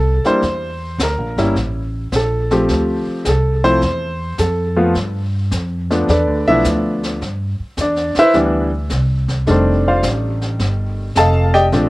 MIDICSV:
0, 0, Header, 1, 5, 480
1, 0, Start_track
1, 0, Tempo, 565504
1, 362, Time_signature, 4, 2, 24, 8
1, 10092, End_track
2, 0, Start_track
2, 0, Title_t, "Grand piano"
2, 0, Program_c, 0, 0
2, 0, Note_on_c, 0, 69, 73
2, 214, Note_on_c, 0, 55, 59
2, 215, Note_off_c, 0, 69, 0
2, 217, Note_on_c, 0, 62, 58
2, 218, Note_on_c, 0, 58, 58
2, 220, Note_on_c, 0, 64, 62
2, 226, Note_on_c, 0, 72, 96
2, 349, Note_off_c, 0, 55, 0
2, 350, Note_off_c, 0, 62, 0
2, 351, Note_off_c, 0, 58, 0
2, 352, Note_off_c, 0, 64, 0
2, 817, Note_off_c, 0, 72, 0
2, 875, Note_on_c, 0, 70, 73
2, 1175, Note_on_c, 0, 55, 65
2, 1175, Note_on_c, 0, 58, 53
2, 1175, Note_on_c, 0, 61, 60
2, 1177, Note_on_c, 0, 64, 69
2, 1307, Note_off_c, 0, 70, 0
2, 1310, Note_off_c, 0, 55, 0
2, 1310, Note_off_c, 0, 58, 0
2, 1310, Note_off_c, 0, 61, 0
2, 1311, Note_off_c, 0, 64, 0
2, 1833, Note_on_c, 0, 69, 71
2, 2133, Note_on_c, 0, 53, 70
2, 2133, Note_on_c, 0, 57, 64
2, 2137, Note_off_c, 0, 69, 0
2, 2137, Note_on_c, 0, 60, 65
2, 2139, Note_on_c, 0, 67, 79
2, 2734, Note_off_c, 0, 53, 0
2, 2734, Note_off_c, 0, 57, 0
2, 2736, Note_off_c, 0, 60, 0
2, 2737, Note_off_c, 0, 67, 0
2, 2757, Note_on_c, 0, 68, 54
2, 2790, Note_off_c, 0, 68, 0
2, 2790, Note_on_c, 0, 69, 73
2, 3089, Note_on_c, 0, 53, 64
2, 3090, Note_on_c, 0, 60, 62
2, 3091, Note_on_c, 0, 57, 61
2, 3091, Note_on_c, 0, 72, 107
2, 3094, Note_on_c, 0, 64, 70
2, 3095, Note_off_c, 0, 69, 0
2, 3228, Note_off_c, 0, 53, 0
2, 3228, Note_off_c, 0, 60, 0
2, 3229, Note_off_c, 0, 57, 0
2, 3230, Note_off_c, 0, 64, 0
2, 3690, Note_off_c, 0, 72, 0
2, 3731, Note_on_c, 0, 69, 72
2, 4044, Note_on_c, 0, 53, 73
2, 4046, Note_on_c, 0, 57, 64
2, 4050, Note_on_c, 0, 59, 62
2, 4050, Note_on_c, 0, 65, 73
2, 4174, Note_off_c, 0, 69, 0
2, 4185, Note_off_c, 0, 53, 0
2, 4186, Note_off_c, 0, 57, 0
2, 4188, Note_off_c, 0, 59, 0
2, 4188, Note_off_c, 0, 65, 0
2, 5012, Note_on_c, 0, 53, 63
2, 5014, Note_on_c, 0, 57, 54
2, 5015, Note_on_c, 0, 59, 57
2, 5017, Note_on_c, 0, 62, 64
2, 5149, Note_off_c, 0, 53, 0
2, 5150, Note_off_c, 0, 57, 0
2, 5150, Note_off_c, 0, 59, 0
2, 5151, Note_off_c, 0, 62, 0
2, 5175, Note_on_c, 0, 74, 73
2, 5177, Note_on_c, 0, 69, 60
2, 5179, Note_on_c, 0, 71, 58
2, 5187, Note_on_c, 0, 62, 57
2, 5487, Note_off_c, 0, 74, 0
2, 5489, Note_off_c, 0, 62, 0
2, 5489, Note_off_c, 0, 69, 0
2, 5490, Note_off_c, 0, 71, 0
2, 5496, Note_on_c, 0, 76, 98
2, 5497, Note_on_c, 0, 53, 60
2, 5498, Note_on_c, 0, 57, 53
2, 5500, Note_on_c, 0, 59, 58
2, 5501, Note_on_c, 0, 62, 71
2, 5506, Note_on_c, 0, 64, 77
2, 5642, Note_off_c, 0, 76, 0
2, 5646, Note_off_c, 0, 64, 0
2, 6095, Note_off_c, 0, 53, 0
2, 6096, Note_off_c, 0, 57, 0
2, 6097, Note_off_c, 0, 59, 0
2, 6098, Note_off_c, 0, 62, 0
2, 6628, Note_on_c, 0, 74, 75
2, 6637, Note_on_c, 0, 62, 66
2, 6933, Note_off_c, 0, 74, 0
2, 6938, Note_off_c, 0, 62, 0
2, 6950, Note_on_c, 0, 71, 79
2, 6950, Note_on_c, 0, 72, 82
2, 6950, Note_on_c, 0, 76, 110
2, 6953, Note_on_c, 0, 64, 91
2, 7080, Note_on_c, 0, 52, 69
2, 7084, Note_on_c, 0, 55, 57
2, 7084, Note_on_c, 0, 59, 59
2, 7086, Note_on_c, 0, 62, 72
2, 7088, Note_off_c, 0, 71, 0
2, 7088, Note_off_c, 0, 72, 0
2, 7088, Note_off_c, 0, 76, 0
2, 7089, Note_off_c, 0, 64, 0
2, 7376, Note_off_c, 0, 52, 0
2, 7377, Note_off_c, 0, 55, 0
2, 7378, Note_off_c, 0, 59, 0
2, 7379, Note_off_c, 0, 62, 0
2, 8039, Note_on_c, 0, 51, 67
2, 8041, Note_on_c, 0, 55, 65
2, 8042, Note_on_c, 0, 57, 66
2, 8044, Note_on_c, 0, 62, 76
2, 8069, Note_on_c, 0, 60, 46
2, 8070, Note_on_c, 0, 72, 56
2, 8071, Note_on_c, 0, 67, 45
2, 8072, Note_on_c, 0, 69, 42
2, 8371, Note_off_c, 0, 72, 0
2, 8373, Note_off_c, 0, 60, 0
2, 8374, Note_off_c, 0, 67, 0
2, 8374, Note_off_c, 0, 69, 0
2, 8384, Note_on_c, 0, 72, 68
2, 8386, Note_on_c, 0, 77, 82
2, 8388, Note_on_c, 0, 65, 68
2, 8389, Note_on_c, 0, 74, 65
2, 8524, Note_off_c, 0, 72, 0
2, 8525, Note_off_c, 0, 77, 0
2, 8526, Note_off_c, 0, 65, 0
2, 8526, Note_off_c, 0, 74, 0
2, 9386, Note_off_c, 0, 51, 0
2, 9387, Note_off_c, 0, 55, 0
2, 9388, Note_off_c, 0, 57, 0
2, 9388, Note_off_c, 0, 62, 0
2, 9485, Note_on_c, 0, 81, 99
2, 9491, Note_on_c, 0, 69, 78
2, 9493, Note_on_c, 0, 75, 72
2, 9494, Note_on_c, 0, 77, 76
2, 9781, Note_off_c, 0, 75, 0
2, 9794, Note_on_c, 0, 75, 83
2, 9795, Note_on_c, 0, 74, 76
2, 9795, Note_on_c, 0, 79, 99
2, 9799, Note_off_c, 0, 81, 0
2, 9799, Note_on_c, 0, 67, 78
2, 9802, Note_off_c, 0, 69, 0
2, 9803, Note_off_c, 0, 77, 0
2, 9889, Note_off_c, 0, 75, 0
2, 9889, Note_off_c, 0, 79, 0
2, 9890, Note_off_c, 0, 74, 0
2, 9892, Note_off_c, 0, 67, 0
2, 9955, Note_on_c, 0, 57, 60
2, 9956, Note_on_c, 0, 53, 65
2, 9958, Note_on_c, 0, 60, 60
2, 9960, Note_on_c, 0, 62, 70
2, 10092, Note_off_c, 0, 53, 0
2, 10092, Note_off_c, 0, 57, 0
2, 10092, Note_off_c, 0, 60, 0
2, 10092, Note_off_c, 0, 62, 0
2, 10092, End_track
3, 0, Start_track
3, 0, Title_t, "Upright bass"
3, 0, Program_c, 1, 32
3, 0, Note_on_c, 1, 36, 79
3, 186, Note_off_c, 1, 36, 0
3, 359, Note_on_c, 1, 40, 79
3, 827, Note_off_c, 1, 40, 0
3, 835, Note_on_c, 1, 38, 78
3, 998, Note_off_c, 1, 38, 0
3, 998, Note_on_c, 1, 34, 56
3, 1154, Note_off_c, 1, 34, 0
3, 1159, Note_on_c, 1, 31, 61
3, 1310, Note_off_c, 1, 31, 0
3, 1322, Note_on_c, 1, 33, 81
3, 1789, Note_off_c, 1, 33, 0
3, 1800, Note_on_c, 1, 34, 81
3, 2268, Note_off_c, 1, 34, 0
3, 2281, Note_on_c, 1, 38, 74
3, 2587, Note_off_c, 1, 38, 0
3, 2762, Note_on_c, 1, 36, 81
3, 3229, Note_off_c, 1, 36, 0
3, 3244, Note_on_c, 1, 40, 85
3, 3710, Note_off_c, 1, 40, 0
3, 3722, Note_on_c, 1, 41, 88
3, 4188, Note_off_c, 1, 41, 0
3, 4205, Note_on_c, 1, 43, 77
3, 4670, Note_off_c, 1, 43, 0
3, 4681, Note_on_c, 1, 41, 82
3, 5148, Note_off_c, 1, 41, 0
3, 5162, Note_on_c, 1, 40, 77
3, 5321, Note_off_c, 1, 40, 0
3, 5321, Note_on_c, 1, 38, 59
3, 5476, Note_off_c, 1, 38, 0
3, 5481, Note_on_c, 1, 35, 63
3, 5631, Note_off_c, 1, 35, 0
3, 5639, Note_on_c, 1, 38, 81
3, 6107, Note_off_c, 1, 38, 0
3, 6121, Note_on_c, 1, 43, 72
3, 6427, Note_off_c, 1, 43, 0
3, 6595, Note_on_c, 1, 40, 83
3, 6903, Note_off_c, 1, 40, 0
3, 7080, Note_on_c, 1, 38, 84
3, 7546, Note_off_c, 1, 38, 0
3, 7563, Note_on_c, 1, 36, 83
3, 8027, Note_off_c, 1, 36, 0
3, 8042, Note_on_c, 1, 29, 79
3, 8506, Note_off_c, 1, 29, 0
3, 8522, Note_on_c, 1, 33, 89
3, 8986, Note_off_c, 1, 33, 0
3, 8992, Note_on_c, 1, 31, 80
3, 9460, Note_off_c, 1, 31, 0
3, 9472, Note_on_c, 1, 29, 88
3, 9940, Note_off_c, 1, 29, 0
3, 9950, Note_on_c, 1, 34, 84
3, 10092, Note_off_c, 1, 34, 0
3, 10092, End_track
4, 0, Start_track
4, 0, Title_t, "Muted upright bass strokes"
4, 2610, Note_on_c, 9, 29, 38
4, 2695, Note_off_c, 9, 29, 0
4, 6446, Note_on_c, 9, 29, 36
4, 6531, Note_off_c, 9, 29, 0
4, 6927, Note_on_c, 9, 29, 38
4, 7012, Note_off_c, 9, 29, 0
4, 10092, End_track
5, 0, Start_track
5, 0, Title_t, "Drums"
5, 206, Note_on_c, 9, 38, 37
5, 291, Note_off_c, 9, 38, 0
5, 358, Note_on_c, 9, 25, 47
5, 358, Note_on_c, 9, 38, 43
5, 443, Note_off_c, 9, 38, 0
5, 842, Note_on_c, 9, 38, 58
5, 844, Note_on_c, 9, 44, 54
5, 927, Note_off_c, 9, 38, 0
5, 929, Note_off_c, 9, 44, 0
5, 1168, Note_on_c, 9, 38, 40
5, 1253, Note_off_c, 9, 38, 0
5, 1324, Note_off_c, 9, 25, 0
5, 1324, Note_on_c, 9, 25, 47
5, 1324, Note_on_c, 9, 38, 44
5, 1409, Note_off_c, 9, 38, 0
5, 1800, Note_on_c, 9, 38, 58
5, 1802, Note_on_c, 9, 44, 54
5, 1885, Note_off_c, 9, 38, 0
5, 1887, Note_off_c, 9, 44, 0
5, 2127, Note_on_c, 9, 38, 39
5, 2212, Note_off_c, 9, 38, 0
5, 2279, Note_off_c, 9, 25, 0
5, 2279, Note_on_c, 9, 25, 53
5, 2279, Note_on_c, 9, 38, 43
5, 2364, Note_off_c, 9, 38, 0
5, 2758, Note_on_c, 9, 38, 56
5, 2760, Note_on_c, 9, 44, 54
5, 2843, Note_off_c, 9, 38, 0
5, 2845, Note_off_c, 9, 44, 0
5, 3088, Note_on_c, 9, 38, 37
5, 3173, Note_off_c, 9, 38, 0
5, 3239, Note_off_c, 9, 25, 0
5, 3239, Note_on_c, 9, 25, 44
5, 3239, Note_on_c, 9, 38, 41
5, 3324, Note_off_c, 9, 38, 0
5, 3718, Note_on_c, 9, 38, 57
5, 3720, Note_on_c, 9, 44, 54
5, 3803, Note_off_c, 9, 38, 0
5, 3804, Note_off_c, 9, 44, 0
5, 4199, Note_off_c, 9, 25, 0
5, 4199, Note_on_c, 9, 25, 50
5, 4199, Note_on_c, 9, 38, 45
5, 4284, Note_off_c, 9, 38, 0
5, 4680, Note_on_c, 9, 38, 56
5, 4682, Note_on_c, 9, 44, 53
5, 4765, Note_off_c, 9, 38, 0
5, 4767, Note_off_c, 9, 44, 0
5, 5012, Note_on_c, 9, 38, 39
5, 5097, Note_off_c, 9, 38, 0
5, 5164, Note_off_c, 9, 25, 0
5, 5164, Note_on_c, 9, 25, 44
5, 5164, Note_on_c, 9, 38, 45
5, 5249, Note_off_c, 9, 38, 0
5, 5639, Note_on_c, 9, 38, 61
5, 5640, Note_on_c, 9, 44, 62
5, 5724, Note_off_c, 9, 38, 0
5, 5725, Note_off_c, 9, 44, 0
5, 5968, Note_on_c, 9, 38, 40
5, 6053, Note_off_c, 9, 38, 0
5, 6125, Note_off_c, 9, 25, 0
5, 6125, Note_on_c, 9, 25, 51
5, 6125, Note_on_c, 9, 38, 46
5, 6210, Note_off_c, 9, 38, 0
5, 6596, Note_on_c, 9, 38, 60
5, 6598, Note_on_c, 9, 44, 51
5, 6681, Note_off_c, 9, 38, 0
5, 6683, Note_off_c, 9, 44, 0
5, 6757, Note_on_c, 9, 38, 27
5, 6841, Note_off_c, 9, 38, 0
5, 6914, Note_on_c, 9, 38, 44
5, 6920, Note_off_c, 9, 38, 0
5, 6920, Note_on_c, 9, 38, 40
5, 7004, Note_off_c, 9, 38, 0
5, 7073, Note_off_c, 9, 25, 0
5, 7073, Note_on_c, 9, 25, 51
5, 7073, Note_on_c, 9, 38, 43
5, 7158, Note_off_c, 9, 38, 0
5, 7551, Note_on_c, 9, 38, 59
5, 7553, Note_on_c, 9, 44, 52
5, 7636, Note_off_c, 9, 38, 0
5, 7638, Note_off_c, 9, 44, 0
5, 7880, Note_on_c, 9, 38, 40
5, 7882, Note_on_c, 9, 36, 55
5, 7965, Note_off_c, 9, 38, 0
5, 7966, Note_off_c, 9, 36, 0
5, 8034, Note_off_c, 9, 25, 0
5, 8034, Note_on_c, 9, 25, 50
5, 8034, Note_on_c, 9, 38, 43
5, 8119, Note_off_c, 9, 38, 0
5, 8511, Note_on_c, 9, 38, 57
5, 8513, Note_on_c, 9, 44, 54
5, 8596, Note_off_c, 9, 38, 0
5, 8598, Note_off_c, 9, 44, 0
5, 8841, Note_on_c, 9, 38, 39
5, 8926, Note_off_c, 9, 38, 0
5, 8992, Note_off_c, 9, 25, 0
5, 8992, Note_on_c, 9, 25, 57
5, 8992, Note_on_c, 9, 38, 45
5, 9077, Note_off_c, 9, 38, 0
5, 9468, Note_on_c, 9, 38, 63
5, 9470, Note_on_c, 9, 44, 57
5, 9553, Note_off_c, 9, 38, 0
5, 9555, Note_off_c, 9, 44, 0
5, 9797, Note_on_c, 9, 38, 39
5, 9882, Note_off_c, 9, 38, 0
5, 9948, Note_off_c, 9, 25, 0
5, 9948, Note_on_c, 9, 25, 46
5, 9948, Note_on_c, 9, 38, 44
5, 10033, Note_off_c, 9, 38, 0
5, 10092, Note_off_c, 9, 25, 0
5, 10092, End_track
0, 0, End_of_file